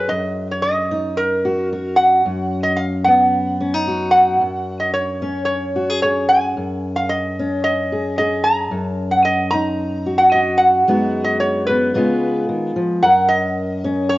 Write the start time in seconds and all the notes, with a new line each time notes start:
Already playing: F#2
0.09 F#2 D#5
0.51 C#5
0.62 D#5
0.91 D#4
1.17 A#4
1.45 F#4
1.73 F#4
1.96 F#5
2.26 F#2
2.63 D#5
2.77 F5
3.04 B3 F#5
3.61 C#4
3.74 D#4
3.88 F#4
4.11 F#5
4.41 F#2
4.80 D#5
4.94 C#5
5.22 C#4
5.45 C#5
5.76 F#4
5.89 G#4
6.02 G#4 C#5
6.29 G#5
6.57 F#2
6.96 F5
7.09 D#5
7.39 C#4
7.64 D#5
7.92 G#4
8.18 G#4 D#5
8.44 A#5
8.71 F#2
9.11 F#5
9.25 D#5
9.51 D#4 A#5
10.06 F#4
10.18 F#5
10.32 F#4 D#5
10.58 F#5
10.87 F#2 G#3 B3 D#4 F#4
11.24 D#5
11.40 C#5
11.67 B3 B4
11.94 C#3 G#3 B3 F4 G#4
12.49 D#3
12.76 F3
13.02 F#2 A#4 F#5
13.28 D#5
13.84 C#4
14.09 C#5